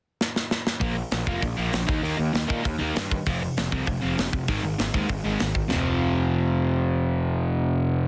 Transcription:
0.21 snare
0.36 snare
0.51 snare
0.67 snare
0.80 A#1 A#2 F3 A#3, kick, open hi-hat
0.96 A#2 F3
1.11 A#1 A#2 F3, snare, open hi-hat
1.26 F1 A#2 F3 A#3, kick
1.42 A#1 A#2 F3, kick, open hi-hat
1.57 A#1 A#2 F3 A#3
1.73 A#1 A#2 F3, snare, open hi-hat
1.87 D#2 D#3 A#3 D#4, kick
2.03 D#2 D#3 A#3 D#4, open hi-hat
2.18 D#2 D#3 A#3
2.33 D#2 D#3 A#3, snare, open hi-hat
2.47 A#2 D#3 A#3 D#4, kick
2.64 D#2 D#3 A#3, kick, open hi-hat
2.79 D#2 D#3 A#3 D#4
2.96 G2 D#3 A#3, snare, open hi-hat
3.11 D#3 A#3, kick
3.26 F1 F2 C3 F3, kick, open hi-hat
3.43 F2 C3
3.57 F1 F2 C3, snare, open hi-hat
3.72 C2 F2 C3 F3, kick
3.87 F1 F2 C3, kick, open hi-hat
4.02 F1 F2 C3 F3
4.17 F1 F2 C3, snare, open hi-hat
4.33 F1 F2 C3, kick
4.48 G#1 G#2 D#3 G#3, kick, open hi-hat
4.63 G#1 G#2 D#3
4.79 G#1 G#2 D#3, snare, open hi-hat
4.94 D#2 G#2 D#3 G#3, kick
5.09 G#1 G#2 D#3, kick, open hi-hat
5.24 G#1 G#2 D#3 G#3
5.40 G#1 G#2 D#3, snare, open hi-hat
5.55 G#2 D#3, kick
5.68 F1 F2 C3, snare, floor tom
5.73 F3

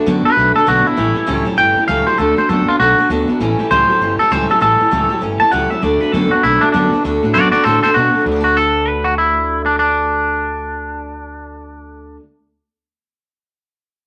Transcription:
0.06 F#2 D3 A3 B3 D4 F#4 A4
0.24 D3 B3 D4 F#4 A4 B4, muted fretless electric bass stroke
0.36 B1 D3 A3 D4 F#4
0.40 A4
0.54 D3 A3 D4 F#4 A4
0.66 B1 D3 A3 B3 D4 F#4 A4
0.85 D3 B3 D4 E4 F#4 A4
0.97 A1 A2 E3 G3 C#4 G4 A4
1.15 A2 E3 G3 C#4 G4 A4
1.26 C#2 A2 E3 F#3 G3 C#4 G4 A4
1.45 A2 F#3 G3 C#4 G4 A4, muted fretless electric bass stroke
1.57 G1 A2 E3 G3 C#4 G4 A4 G5
1.76 A2 E3 G3 C#4 G4 A4, muted fretless electric bass stroke
1.88 C#2 A2 E3 F#3 G3 C#4 G4 A4 F5
2.07 A2 F#3 G3 C#4 G4 A4 C5
2.18 D2 D3 A3 D4 F#4 A4
2.37 D3 A3 D4 F#4 A4 C5, muted fretless electric bass stroke
2.49 F#2 D3 A3 B3 D4 F#4 A4
2.67 D3 B3 D4 F4 F#4 A4, muted fretless electric bass stroke
2.79 B1 D3 A3 D4 F#4 A4
2.98 D3 A3 D4 F#4 A4
3.10 D2 D3 A3 B3 D4 F#4 A4
3.28 D3 B3 D4 F#4 A4, muted fretless electric bass stroke
3.40 A1 A2 E3 G3 C#4 G4 A4
3.58 A2 E3 G3 C#4 G4 A4
3.71 C#2 A2 E3 F#3 G3 C#4 G4 A4 C5
3.89 A2 F#3 G3 C#4 G4 A4, muted fretless electric bass stroke
4.01 G1 A2 E3 G3 C#4 G4 A4
4.19 A2 E3 G3 C#4 G4 A4, muted fretless electric bass stroke
4.31 C#2 A2 E3 F#3 G3 C#4 G4 A4 C5
4.49 A2 F#3 G3 C#4 G4 A4
4.60 A1 A2 E3 G3 C#4 G4 A4
4.79 A2 E3 G3 C#4 G4 A4
4.91 C#2 A2 E3 F#3 G3 C#4 G4 A4
5.09 A2 F#3 G3 C#4 G4 A4, muted fretless electric bass stroke
5.21 G1 A2 E3 G3 C#4 G4 A4
5.40 A2 E3 G3 C#4 G4 A4 A5, muted fretless electric bass stroke
5.51 C#2 A2 E3 F#3 G3 C#4 G4 A4 F#5
5.70 A2 F#3 G3 C#4 G4 A4 E5
5.82 D2 D3 A3 D4 F#4 A4 D5
6.00 D3 A3 D4 F#4 A4 B4, muted fretless electric bass stroke
6.12 F#2 D3 A3 B3 D4 F#4 A4
6.31 D3 B3 D4 F#4 A4, muted fretless electric bass stroke
6.43 B1 D3 A3 D4 E4 F#4 A4
6.61 D3 A3 D4 F#4 A4, muted fretless electric bass stroke
6.72 F#2 D3 A3 B3 D4 F#4 A4
6.92 D3 B3 D4 F#4 A4, muted fretless electric bass stroke
7.04 D2 D3 A3 D4 F#4 A4
7.23 A2 D3 A3 D4 F#4 A4
7.34 F#2 D3 A3 B3 D4 F#4 A4 D5
7.52 D3 A3 F#4 A4 D5, muted fretless electric bass stroke
7.56 D4
7.64 A2 D3 A3 D4 F#4 A4 C5
7.83 D3 A3 D4 F#4 A4 C5, muted fretless electric bass stroke
7.94 B2 D3 A3 B3 D4 F#4 A4
8.14 D3 A3 D4 F#4 A4, muted fretless electric bass stroke
8.21 D3
8.26 D2 A3 D4 F#4
8.32 D4
8.36 F#4
8.41 F#4 A4
8.57 A4
8.88 B4
9.04 F#4
9.18 E4
9.66 D4
9.79 D4

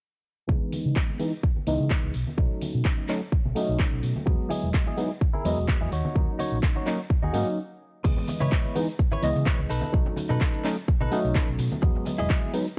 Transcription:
0.47 C#2 E3 G#3 B3 D#4, kick
0.72 open hi-hat, tambourine, high conga
0.85 C#3, tambourine
0.96 kick, clap
1.08 tambourine, high conga
1.19 E3 G#3 B3 D#4, open hi-hat, tambourine
1.43 kick
1.56 muted fingered electric bass stroke, tambourine, high conga
1.67 C#2 E3 G#3 B3 D#4, open hi-hat
1.80 C#3
1.90 kick, clap, tambourine, high conga
2.04 C#2
2.14 B1, open hi-hat
2.27 tambourine, high conga
2.37 B1 F#3 A3 C#4 D#4, kick
2.61 open hi-hat, tambourine, high conga
2.74 B2, tambourine
2.85 kick, clap
2.98 tambourine, high conga
3.08 F#3 A3 C#4 D#4, clap, open hi-hat, tambourine
3.21 tambourine
3.32 kick
3.45 B1, tambourine, high conga
3.55 F#3 A3 C#4 D#4, open hi-hat, tambourine
3.69 B1
3.79 kick, clap, tambourine, high conga
3.92 B1, tambourine
4.03 B2, open hi-hat
4.16 tambourine, high conga
4.26 E2 F#3 G#3 B3 D#5, kick
4.50 E4 G#4 D#5, open hi-hat, tambourine, high conga
4.63 E1, tambourine
4.74 kick, clap
4.86 E4 G#4 D#5, tambourine, high conga
4.97 F#3 G#3 B3 D#4, open hi-hat, tambourine
5.10 tambourine
5.21 kick
5.33 E4 G#4 A#4, muted fingered electric bass stroke, tambourine, high conga
5.45 E2 F#3 G#3 B3 D#5, open hi-hat
5.58 E1
5.68 kick, clap, tambourine, high conga
5.81 E2 E4 G#4 D#5
5.91 D#2 D#4 F#4 C#5, open hi-hat
6.05 tambourine, high conga
6.15 D#2 F#3 A#3 C#4 D#4, kick
6.39 D#4 F#4 C#5, open hi-hat, tambourine, high conga
6.52 A#1, tambourine
6.63 kick, clap
6.76 D#4 F#4 C#5, tambourine, high conga
6.86 F#3 A#3 C#4 D#4, clap, open hi-hat, tambourine
7.09 kick, tambourine
7.22 D#2 D#4 F#4 G#4, tambourine, high conga
7.33 G#2 F#3 A#3 C#4 D#4, open hi-hat, tambourine
7.47 tambourine
8.04 C#2 E3 G#3 B3 D#5, muted clean electric guitar stroke, kick, crash, tambourine, shaker
8.17 muted clean electric guitar stroke, tambourine, low conga
8.28 muted clean electric guitar stroke, open hi-hat, tambourine, high conga, shaker
8.40 C#3 E4 B4 C#5, tambourine, low conga, shaker
8.52 kick, clap, shaker
8.65 tambourine, high conga, shaker
8.75 E3 G#3 B3 D#4, open hi-hat, tambourine, shaker
8.88 tambourine, shaker
8.99 kick, shaker
9.12 E4 B4 C#5, muted fingered electric bass stroke, tambourine, high conga, low conga, shaker
9.23 C#2 E3 G#3 B3 D#5, open hi-hat, tambourine, shaker
9.35 C#3, tambourine, shaker
9.46 E4 B4 C#5, kick, clap, tambourine, high conga, shaker
9.59 C#2, tambourine, shaker
9.69 B1 D#4 A4 B4, open hi-hat, tambourine, shaker
9.81 tambourine, high conga, shaker
9.92 B1 F#3 A3 C#4 D#4, kick, tambourine, shaker
10.06 muted clean electric guitar stroke, tambourine, low conga
10.16 muted clean electric guitar stroke, open hi-hat, tambourine, high conga, shaker
10.29 B2 D#4 A4 B4, tambourine, low conga, shaker
10.41 kick, clap, shaker
10.53 tambourine, high conga, shaker
10.64 F#3 A3 C#4 D#4, clap, open hi-hat, tambourine, shaker
10.78 tambourine, shaker
10.88 kick, tambourine, shaker
11.01 B1 D#4 A4 B4, tambourine, high conga, low conga, shaker
11.11 F#3 A3 C#4 D#4, open hi-hat, tambourine, shaker
11.24 B1, tambourine, shaker
11.35 D#4 A4 B4, kick, clap, tambourine, high conga, shaker
11.48 B1, tambourine, shaker
11.58 B2, muted clean electric guitar stroke, open hi-hat, tambourine, shaker
11.72 tambourine, high conga, shaker
11.82 E2 F#3 G#3 B3 D#5, muted clean electric guitar stroke, kick, tambourine, shaker
11.95 muted clean electric guitar stroke, tambourine, low conga
12.06 muted clean electric guitar stroke, open hi-hat, tambourine, high conga, shaker
12.18 E1 E4 G#4 D#5, tambourine, low conga, shaker
12.30 kick, clap, shaker
12.43 tambourine, high conga, shaker
12.53 F#3 G#3 B3 D#4, open hi-hat, tambourine, shaker
12.66 tambourine, shaker

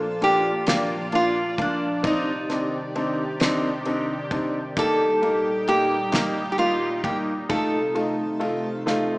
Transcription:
Already playing: A#2 F3 F4 A4 D5
0.21 A#3 D4 F4 G4, ride
0.67 A#3 D4 F4, snare, ride
1.12 A#3 D4 F4, ride
1.58 A#3 D4 F4, kick, ride
2.03 C3 D#3 C4 D4 D#4 G4, kick, ride
2.49 C4 D4 D#4, snare, ride
2.95 C4 D4 D#4, ride
3.40 C4 D4 D#4, snare, ride
3.85 C4 D4 D#4, ride
4.31 C4 D4 D#4, kick, ride
4.76 A#2 G3 A#3 D#4 G4 A4, kick, ride
5.22 A#3 D#4 G4, ride
5.67 A#3 D#4 G4, ride
6.12 A#3 D#4 G4, snare, ride
6.52 G4
6.58 A#3 D#4 F4 G4, ride
7.04 A#3 D#4 G4, kick, ride
7.49 C3 A3 D#4 F4 A4, kick, ride
7.95 A3 D#4 F4, ride
8.40 A3 D#4 F4, ride
8.86 A3 D#4 F4, snare

